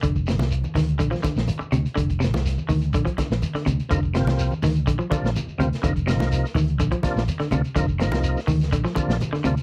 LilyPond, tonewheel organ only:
\new Staff \with { instrumentName = "Tonewheel organ" } { \clef bass \time 4/4 \key bes \mixolydian \tempo 4 = 124 r1 | r1 | <c f bes ees'>8 <c f bes c'>4 r4 <c f bes d'>8 r8 <c f bes c'>8 | <c f bes ees'>8 <c f bes ees'>4 r4 <c f bes d'>8 r8 <c f bes d'>8 |
<c f bes ees'>8 <c f bes ees'>4 r4 <c f bes d'>8 r8 <c f bes d'>8 | }